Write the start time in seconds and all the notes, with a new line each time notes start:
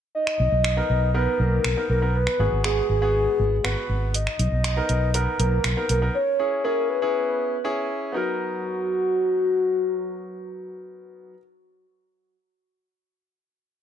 0.15 D#5
0.27 finger snap
0.39 B1
0.52 B1
0.64 finger snap
0.77 B3 D#4 A#4
0.90 B1
1.14 B3 D#4 A#4 B4
1.39 B1 A#4
1.64 B1, finger snap
1.77 B3 D#4 A#4
1.89 B1 A#4
2.02 B3 D#4 A#4
2.15 B4
2.27 finger snap
2.39 G#1 B3 F#4 G#4
2.52 G#1
2.64 B3 F#4 G#4, finger snap
2.89 G#1 G#4
3.02 B3 F#4 G#4
3.39 G#1
3.64 G#1 B3 F#4 B4, finger snap
3.89 G#1
4.14 D#5, closed hi-hat
4.27 finger snap
4.39 B1, closed hi-hat
4.52 B1
4.64 finger snap, closed hi-hat
4.77 B3 D#4 A#4
4.89 B1, closed hi-hat
5.14 B3 D#4 A#4 B4, closed hi-hat
5.39 B1 A#4, closed hi-hat
5.64 B1, finger snap, closed hi-hat
5.77 B3 D#4 A#4
5.89 B1 A#4, closed hi-hat
6.02 B3 D#4 A#4
6.15 C#5
6.39 C#4 E4 G#4
6.64 C#4 E4 G#4 A#4
6.89 B4
7.02 C#4 E4 G#4
7.64 C#4 E4 G#4
8.12 B3 D#4 F#4 A#4